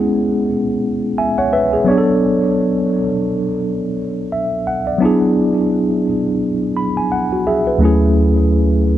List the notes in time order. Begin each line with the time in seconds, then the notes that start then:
Already playing: G#3 B3 C#4 E4 G#4 F#5
1.18 E5 G#5
1.38 C#5 F#5
1.53 B4 E5
1.73 G#4
1.85 F#3 B3 C#5 D5
1.90 D4 G#4
1.98 A4
4.32 E5
4.67 F#5
4.87 D5
4.98 F#3 B3 D4
5.03 E4 G#4
6.77 B5
6.97 G#5
7.12 F#5
7.33 F#4
7.47 G#4 E5
7.67 B4
7.78 D2 F#3 A3
7.82 C#4 E4 G#4